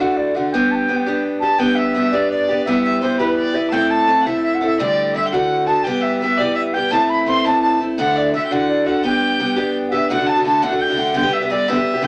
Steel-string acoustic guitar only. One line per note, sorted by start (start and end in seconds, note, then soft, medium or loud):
0.00 0.36 D2 medium
0.00 0.36 A2 soft
0.00 0.37 D3 medium
0.00 0.35 A3 medium
0.00 0.35 D4 medium
0.00 0.33 F#4 medium
0.35 0.53 D3 soft
0.35 0.54 A3 soft
0.35 0.53 D4 soft
0.35 0.53 F#4 medium
0.54 0.88 G3 medium
0.54 0.89 B3 medium
0.54 0.88 D4 medium
0.54 0.90 G4 medium
0.88 1.06 G3 soft
0.88 1.07 B3 medium
0.88 1.06 D4 medium
0.88 1.05 G4 medium
1.06 1.58 G3 medium
1.06 1.45 B3 medium
1.06 1.42 D4 medium
1.06 1.42 G4 medium
1.42 1.58 B3 soft
1.42 1.58 D4 soft
1.42 1.59 G4 medium
1.58 1.93 G3 medium
1.58 1.94 B3 medium
1.58 1.95 D4 medium
1.58 1.95 G4 medium
1.94 2.12 G3 medium
1.94 2.12 B3 medium
1.94 2.12 D4 medium
1.94 2.12 G4 medium
2.13 2.49 G3 soft
2.13 2.48 B3 medium
2.13 2.48 D4 medium
2.13 2.47 G4 medium
2.49 2.66 B3 soft
2.49 2.67 D4 soft
2.49 2.66 G4 medium
2.67 3.00 G3 medium
2.67 3.01 B3 medium
2.67 3.02 E4 medium
2.67 3.03 G4 medium
3.01 3.19 G3 medium
3.01 3.19 B3 medium
3.01 3.19 E4 medium
3.01 3.18 G4 medium
3.19 3.56 G3 medium
3.19 3.55 B3 medium
3.19 3.54 E4 medium
3.19 3.52 G4 medium
3.53 3.72 B3 soft
3.53 3.72 E4 soft
3.53 3.72 G4 soft
3.72 4.07 A2 medium
3.72 4.06 A3 medium
3.72 4.08 C4 medium
3.72 4.08 E4 medium
3.72 4.08 A4 medium
4.07 4.25 A3 medium
4.07 4.25 C4 medium
4.07 4.25 E4 medium
4.07 4.25 A4 medium
4.26 4.62 A2 medium
4.26 4.62 A3 medium
4.26 4.61 C4 medium
4.26 4.61 E4 medium
4.26 4.60 A4 medium
4.61 4.80 C4 soft
4.61 4.79 E4 medium
4.61 4.79 A4 soft
4.79 5.14 D2 medium
4.79 5.15 A2 medium
4.79 5.13 D3 medium
4.79 5.15 G3 medium
4.79 5.15 A3 medium
4.79 5.15 G4 medium
5.15 5.32 D3 medium
5.15 5.33 G3 medium
5.15 5.33 A3 medium
5.15 5.32 G4 medium
5.32 5.68 D2 medium
5.32 5.68 A2 medium
5.32 5.68 D3 medium
5.32 5.67 A3 medium
5.32 5.66 D4 medium
5.32 5.65 F#4 medium
5.66 5.85 D3 soft
5.66 5.85 A3 soft
5.66 5.85 D4 soft
5.66 5.84 F#4 medium
5.85 6.20 E3 medium
5.85 6.21 G3 medium
5.85 6.21 B3 medium
5.85 6.21 G4 medium
6.21 6.38 E3 soft
6.21 6.39 G3 medium
6.21 6.39 B3 medium
6.21 6.39 G4 medium
6.40 6.75 E3 medium
6.40 6.75 G3 medium
6.40 6.75 B3 medium
6.40 6.73 G4 medium
6.74 6.92 G3 soft
6.74 6.92 B3 soft
6.74 6.91 G4 medium
6.91 7.26 A2 medium
6.91 7.25 E3 medium
6.91 7.26 A3 medium
6.91 7.26 C4 medium
6.91 7.27 E4 medium
7.26 7.44 E3 medium
7.26 7.44 A3 medium
7.26 7.44 C4 medium
7.26 7.43 E4 medium
7.44 7.81 A2 medium
7.44 7.81 E3 medium
7.44 7.80 A3 medium
7.44 7.80 C4 medium
7.44 7.79 E4 medium
7.81 7.98 A3 soft
7.81 7.99 C4 soft
7.81 7.98 E4 medium
7.98 8.33 D2 medium
7.98 8.33 A2 medium
7.98 8.33 D3 medium
7.98 8.33 A3 medium
7.98 8.35 D4 medium
7.98 8.34 F#4 medium
8.34 8.51 D3 medium
8.34 8.50 A3 medium
8.34 8.50 D4 medium
8.34 8.50 F#4 medium
8.51 8.87 D2 soft
8.51 8.87 A2 medium
8.51 8.88 D3 medium
8.51 8.86 A3 medium
8.51 8.86 D4 medium
8.51 8.85 F#4 medium
8.86 9.03 D3 soft
8.86 9.04 A3 soft
8.86 9.04 D4 medium
8.86 9.03 F#4 medium
9.03 9.38 G3 medium
9.03 9.39 B3 medium
9.03 9.41 D4 medium
9.03 9.40 G4 medium
9.39 9.57 G3 medium
9.39 9.56 B3 medium
9.39 9.56 D4 medium
9.39 9.55 G4 medium
9.56 9.93 G3 medium
9.56 9.92 B3 medium
9.56 9.92 D4 medium
9.56 9.91 G4 medium
9.92 10.10 B3 soft
9.92 10.10 D4 soft
9.92 10.09 G4 medium
10.10 10.19 D2 medium
10.10 10.19 A2 medium
10.10 10.19 D3 medium
10.10 10.19 A3 medium
10.10 10.18 D4 medium
10.10 10.17 F#4 medium
10.18 10.37 D3 soft
10.18 10.37 A3 soft
10.18 10.37 D4 soft
10.18 10.35 F#4 medium
10.36 10.43 D3 soft
10.36 10.44 A3 soft
10.36 10.45 D4 soft
10.36 10.45 F#4 soft
10.45 10.62 D3 medium
10.45 10.62 A3 medium
10.45 10.62 D4 medium
10.45 10.62 F#4 medium
10.62 10.71 D2 medium
10.62 10.71 A2 medium
10.62 10.72 D3 medium
10.62 10.72 A3 medium
10.62 10.71 D4 medium
10.62 10.69 F#4 medium
10.70 10.90 D3 soft
10.70 10.89 A3 soft
10.70 10.88 D4 medium
10.70 10.87 F#4 soft
10.88 10.95 D3 soft
10.88 10.96 A3 soft
10.88 10.97 D4 soft
10.88 10.97 F#4 medium
10.96 11.13 D3 medium
10.96 11.14 A3 medium
10.96 11.14 D4 medium
10.96 11.15 F#4 medium
11.14 11.24 D3 medium
11.14 11.24 G3 medium
11.14 11.23 B3 medium
11.14 11.22 G4 medium
11.23 11.42 G3 soft
11.23 11.41 B3 soft
11.23 11.39 G4 medium
11.41 11.49 G3 soft
11.41 11.50 B3 soft
11.41 11.50 G4 soft
11.50 11.67 D3 medium
11.50 11.67 G3 medium
11.50 11.68 B3 medium
11.50 11.68 G4 medium
11.68 11.77 D3 medium
11.68 11.77 G3 medium
11.68 11.76 B3 medium
11.68 11.75 G4 medium
11.76 11.95 G3 soft
11.76 11.94 B3 medium
11.76 11.92 G4 medium
11.94 12.01 G3 soft
11.94 12.02 B3 soft
11.94 12.03 G4 medium
12.02 12.07 D3 medium
12.02 12.07 G3 medium
12.02 12.07 B3 medium
12.02 12.07 G4 medium